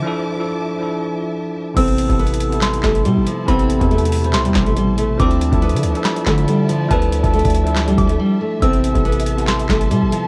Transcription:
Already playing: tine electric piano F3 D4 E4 A4, string section F3 E5 A5 D6
0.03 tine electric piano F3 D4 E4
0.07 tine electric piano A4
0.36 tine electric piano F3 D4 E4
0.40 tine electric piano A4
0.79 tine electric piano F3 D4 E4
0.83 tine electric piano A4
1.74 808-style bass A1, tine electric piano C3 B3 E4, nylon-string guitar C4, string section E4 A4 A5, synth bell E6, kick, closed hi-hat, crash
1.79 tine electric piano A4
1.88 closed hi-hat
1.98 closed hi-hat
2.07 808-style bass A1, tine electric piano C3 B3 E4, kick, closed hi-hat
2.11 tine electric piano A4
2.19 nylon-string guitar B3, closed hi-hat
2.27 closed hi-hat
2.34 closed hi-hat
2.40 closed hi-hat
2.50 tine electric piano C3 B3 E4, closed hi-hat
2.54 tine electric piano A4
2.61 synth bell C6, snare, clap, closed hi-hat
2.74 closed hi-hat
2.83 808-style bass A1, nylon-string guitar A3, kick, snare, clap, closed hi-hat
2.95 closed hi-hat
3.05 808-style bass C3, nylon-string guitar G3, closed hi-hat
3.17 808-style bass A1
3.26 nylon-string guitar F3, closed hi-hat
3.46 808-style bass A1, tine electric piano C3 B3 E4, nylon-string guitar C4, synth bell B5, kick, closed hi-hat
3.50 tine electric piano A4
3.59 closed hi-hat
3.70 closed hi-hat
3.78 808-style bass E2, tine electric piano C3 B3 E4, kick, closed hi-hat
3.83 tine electric piano A4
3.91 nylon-string guitar A3, closed hi-hat
3.98 closed hi-hat
4.05 closed hi-hat
4.12 open hi-hat
4.21 tine electric piano B2 C3 E4, closed hi-hat
4.26 tine electric piano C5
4.33 808-style bass C2, synth bell C6, snare, clap, closed hi-hat
4.45 808-style bass E2, nylon-string guitar G3, closed hi-hat
4.54 808-style bass A1, kick, snare, clap, closed hi-hat
4.66 nylon-string guitar A3, closed hi-hat
4.77 nylon-string guitar G3, closed hi-hat
4.98 nylon-string guitar A3, closed hi-hat
5.17 808-style bass D2, tine electric piano F3 D4 E4, string section F3 D5 E5, nylon-string guitar C4, synth bell D6, kick, closed hi-hat
5.22 tine electric piano A4
5.31 closed hi-hat
5.41 closed hi-hat
5.50 808-style bass D2, tine electric piano F3 D4 E4, kick, closed hi-hat
5.54 tine electric piano A4
5.62 nylon-string guitar B3, closed hi-hat
5.70 closed hi-hat
5.74 808-style bass D3, closed hi-hat
5.83 808-style bass D2, closed hi-hat
5.93 tine electric piano F3 D4 E4, closed hi-hat
5.97 tine electric piano A4
6.04 synth bell B5, snare, clap, closed hi-hat
6.16 closed hi-hat
6.26 808-style bass D3, nylon-string guitar A3, kick, snare, clap, closed hi-hat
6.38 closed hi-hat
6.48 nylon-string guitar G3, closed hi-hat
6.69 nylon-string guitar F3, closed hi-hat
6.89 808-style bass D2, tine electric piano F3 D4 E4, nylon-string guitar B3, synth bell A5, kick, closed hi-hat
6.93 tine electric piano A4
7.02 closed hi-hat
7.13 closed hi-hat
7.22 808-style bass D2, tine electric piano F3 D4 E4, kick, closed hi-hat
7.26 tine electric piano A4
7.34 nylon-string guitar A3, closed hi-hat
7.39 closed hi-hat
7.45 808-style bass D2, kick, closed hi-hat
7.50 closed hi-hat
7.55 closed hi-hat
7.64 tine electric piano F3 D4 E4, closed hi-hat
7.68 tine electric piano A4
7.76 snare, clap, closed hi-hat
7.88 nylon-string guitar G3, closed hi-hat
7.98 808-style bass D2, synth bell D6, kick, closed hi-hat
8.09 nylon-string guitar A3, closed hi-hat
8.20 nylon-string guitar G3
8.41 nylon-string guitar A3
8.60 808-style bass A1, tine electric piano C3 B3 E4, nylon-string guitar C4, string section A4 A5, synth bell E6, kick, closed hi-hat
8.64 tine electric piano A4
8.73 closed hi-hat
8.84 closed hi-hat
8.93 808-style bass A1, tine electric piano C3 B3 E4, kick, closed hi-hat
8.97 tine electric piano A4
9.05 nylon-string guitar B3, closed hi-hat
9.12 closed hi-hat
9.20 closed hi-hat
9.26 closed hi-hat
9.36 tine electric piano C3 B3 E4, closed hi-hat
9.40 tine electric piano A4
9.47 synth bell C6, snare, clap, closed hi-hat
9.59 closed hi-hat
9.69 808-style bass A1, nylon-string guitar A3, kick, snare, clap, closed hi-hat
9.81 closed hi-hat
9.91 808-style bass C3, nylon-string guitar G3, closed hi-hat
10.02 808-style bass A1
10.12 nylon-string guitar F3, closed hi-hat

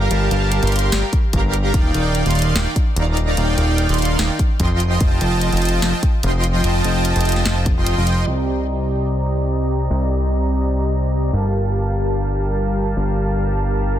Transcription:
0.11 analog synth bass G1, supersaw synth G3 G4 A#4 F5 A5, closed hi-hat
0.31 analog synth bass G1, supersaw synth G3 G4 A#4 F5 A5, closed hi-hat
0.52 closed hi-hat
0.63 analog synth bass G1, supersaw synth G3 G4 A#4 F5 C6, closed hi-hat
0.67 closed hi-hat
0.72 closed hi-hat
0.76 closed hi-hat
0.79 closed hi-hat
0.92 analog synth bass G1, supersaw synth G3 G4 A#4 F5 G5, snare, closed hi-hat
1.13 kick, closed hi-hat
1.33 analog synth bass G1, supersaw synth G3 G4 A#4 F5 A#5, kick, closed hi-hat
1.54 closed hi-hat
1.74 supersaw synth D#3 D#4 D5 F5 G5, kick, closed hi-hat
1.94 analog synth bass D#1, supersaw synth D#3 D#4 D5 F5 G5, closed hi-hat
2.15 closed hi-hat
2.26 analog synth bass D#1, supersaw synth D#3 D#4 D5 F5 C6, closed hi-hat
2.31 closed hi-hat
2.35 closed hi-hat
2.39 closed hi-hat
2.42 closed hi-hat
2.56 analog synth bass D#1, supersaw synth D#3 D#4 D5 F5 G5, snare, closed hi-hat
2.76 kick, closed hi-hat
2.96 analog synth bass D#1, supersaw synth D#3 D#4 D5 F5 A#5, closed hi-hat
3.17 closed hi-hat
3.37 analog synth bass D#1, supersaw synth D#3 D#4 D5 F5 G5, closed hi-hat
3.58 analog synth bass D#1, supersaw synth D#3 D#4 D5 F5 G5, closed hi-hat
3.78 closed hi-hat
3.89 analog synth bass D#1, supersaw synth D#3 D#4 D5 F5 C6, closed hi-hat
3.94 closed hi-hat
3.99 closed hi-hat
4.02 closed hi-hat
4.05 closed hi-hat
4.19 analog synth bass D#1, supersaw synth D#3 D#4 D5 F5 G5, snare, closed hi-hat
4.39 kick, closed hi-hat
4.60 analog synth bass F1, supersaw synth F3 F4 D#5 G5 C6, kick, closed hi-hat
4.80 closed hi-hat
5.01 supersaw synth F3 F4 D#5 G5 A5, kick, closed hi-hat
5.21 analog synth bass F1, supersaw synth F3 F4 D#5 G5 A5, closed hi-hat
5.41 closed hi-hat
5.53 analog synth bass F1, supersaw synth F3 F4 D#5 G5 A5, closed hi-hat
5.57 closed hi-hat
5.62 closed hi-hat
5.65 closed hi-hat
5.69 closed hi-hat
5.82 analog synth bass F1, supersaw synth F3 F4 D#5 G5 A5, snare, closed hi-hat
6.03 kick, closed hi-hat
6.23 analog synth bass F1, supersaw synth F3 F4 D#5 G5 C6, closed hi-hat
6.44 closed hi-hat
6.64 analog synth bass F1, supersaw synth F3 F4 D#5 G5 A5, closed hi-hat
6.84 analog synth bass F1, supersaw synth F3 F4 D#5 G5 A5, closed hi-hat
7.05 closed hi-hat
7.16 analog synth bass F1, supersaw synth F3 F4 D#5 G5 A5, closed hi-hat
7.21 closed hi-hat
7.25 closed hi-hat
7.29 closed hi-hat
7.32 closed hi-hat
7.36 snare
7.46 analog synth bass F1, supersaw synth F3 F4 D#5 G5 A5, snare, closed hi-hat
7.66 kick, closed hi-hat
7.77 analog synth bass F1, supersaw synth F3 F4 D#5 G5 C6
7.87 closed hi-hat
7.97 analog synth bass F1, supersaw synth F3 F4 D#5 G5 C6
8.07 closed hi-hat
8.27 analog synth bass C2, supersaw synth C4 G4 D5 D#5 A#5
9.90 analog synth bass C2
11.33 analog synth bass G1, supersaw synth G3 G4 A#4 F5 A5
12.97 analog synth bass G1

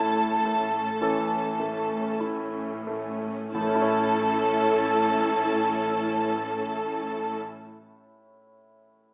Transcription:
Already playing: double bass section A1, cello section A2, grand piano A2 A3 E4, viola section A3 C#4, french horn section A3, violin section A4 A5, flute A5
0.43 viola section A3 C#4, grand piano A3
1.00 double bass section A1, cello section A2, trombone section E3 C#4, grand piano E3, trumpet section A4
1.59 viola section A3 C#4, grand piano A3
2.20 double bass section A1, cello section A2, grand piano E4
2.86 viola section A3 C#4, grand piano A3
3.53 double bass section A1, timpani A2, cello section A2, grand piano A2, trombone section E3 C#4, french horn section A3, viola section C#4 E4, trumpet section A4, violin section A4 A5, flute A5
3.61 grand piano A3
3.68 grand piano C#4
3.75 grand piano E4
3.82 grand piano C#5

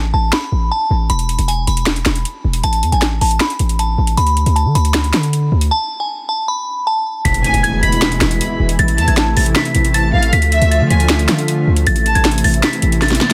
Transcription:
Already playing: 808-style bass A1
0.14 808-style bass A1, synth bell A5
0.33 synth bell B5, finger snap, snare
0.52 808-style bass A1
0.71 synth bell A5
0.91 808-style bass A1
1.10 808-style bass E1, synth bell B5, closed hi-hat
1.19 closed hi-hat
1.29 closed hi-hat
1.39 808-style bass E1, closed hi-hat
1.48 synth bell G#5, closed hi-hat
1.67 808-style bass E1, synth bell B5, closed hi-hat
1.77 closed hi-hat
1.86 finger snap, snare, closed hi-hat
1.96 closed hi-hat
2.05 808-style bass E1, finger snap, snare, closed hi-hat
2.15 closed hi-hat
2.25 closed hi-hat
2.44 808-style bass E1
2.53 closed hi-hat
2.64 808-style bass A1, synth bell A5, closed hi-hat
2.73 closed hi-hat
2.83 808-style bass E2, closed hi-hat
2.92 808-style bass A1, synth bell G#5, closed hi-hat
3.02 finger snap, snare, closed hi-hat
3.21 808-style bass A1, synth bell A5, open hi-hat
3.31 closed hi-hat
3.40 synth bell B5, finger snap, snare, closed hi-hat
3.50 closed hi-hat
3.59 808-style bass A1, closed hi-hat
3.69 closed hi-hat
3.79 synth bell A5, closed hi-hat
3.98 808-style bass A1
4.07 closed hi-hat
4.17 808-style bass D2, synth bell B5, closed hi-hat
4.27 closed hi-hat
4.37 closed hi-hat
4.46 808-style bass D2, closed hi-hat
4.56 synth bell A5, closed hi-hat
4.65 808-style bass D3
4.75 808-style bass D2, synth bell B5, closed hi-hat
4.85 closed hi-hat
4.94 finger snap, snare, closed hi-hat
5.04 closed hi-hat
5.13 808-style bass D3, finger snap, snare, closed hi-hat
5.23 closed hi-hat
5.33 closed hi-hat
5.52 808-style bass D2
5.61 closed hi-hat
5.71 synth bell A5
6.00 synth bell G#5
6.29 synth bell A5
6.48 synth bell B5
6.87 synth bell A5
7.25 808-style bass E1, analog synth pad B2 E3 G#3 E4, synth bell B6, closed hi-hat, impact
7.34 closed hi-hat
7.44 violin section G#5, closed hi-hat
7.54 808-style bass E1, closed hi-hat
7.63 synth bell G#6, closed hi-hat
7.83 808-style bass E1, violin section B5, synth bell B6, closed hi-hat
7.92 closed hi-hat
8.02 finger snap, snare, closed hi-hat
8.12 closed hi-hat
8.21 808-style bass E1, finger snap, snare, closed hi-hat
8.31 closed hi-hat
8.41 closed hi-hat
8.60 808-style bass E1
8.69 closed hi-hat
8.79 808-style bass A1, analog synth pad C3 A3, synth bell A6, closed hi-hat
8.88 closed hi-hat
8.98 808-style bass E2, violin section A5, closed hi-hat
9.08 808-style bass A1, synth bell G#6, closed hi-hat
9.17 finger snap, snare, closed hi-hat
9.37 808-style bass A1, synth bell A6, open hi-hat
9.46 closed hi-hat
9.55 synth bell B6, finger snap, snare, closed hi-hat
9.65 closed hi-hat
9.75 808-style bass A1, closed hi-hat
9.85 closed hi-hat
9.94 violin section A5, synth bell A6, closed hi-hat
10.14 808-style bass A1, violin section F5
10.23 closed hi-hat
10.33 808-style bass D2, analog synth pad D3 F3 F4, synth bell B6, closed hi-hat
10.42 closed hi-hat
10.52 violin section E5, closed hi-hat
10.62 808-style bass D2, closed hi-hat
10.71 synth bell A6, closed hi-hat
10.81 808-style bass D3
10.90 808-style bass D2, violin section G#5, synth bell B6, closed hi-hat
11.00 closed hi-hat
11.09 finger snap, snare, closed hi-hat
11.19 closed hi-hat
11.28 808-style bass D3, finger snap, snare, closed hi-hat
11.38 closed hi-hat
11.48 closed hi-hat
11.67 808-style bass D2
11.76 closed hi-hat
11.86 808-style bass A1, analog synth pad C3 E3 E4, synth bell A6, closed hi-hat
11.96 closed hi-hat
12.06 violin section A5, closed hi-hat
12.15 808-style bass A1, synth bell G#6, closed hi-hat
12.25 finger snap, snare, closed hi-hat
12.31 closed hi-hat
12.38 closed hi-hat
12.44 808-style bass A1, synth bell A6, open hi-hat
12.54 closed hi-hat
12.63 synth bell B6, finger snap, snare, closed hi-hat
12.73 closed hi-hat
12.82 808-style bass A1, closed hi-hat
12.92 closed hi-hat
13.02 synth bell A6, snare, closed hi-hat
13.08 snare, closed hi-hat
13.15 closed hi-hat
13.21 snare

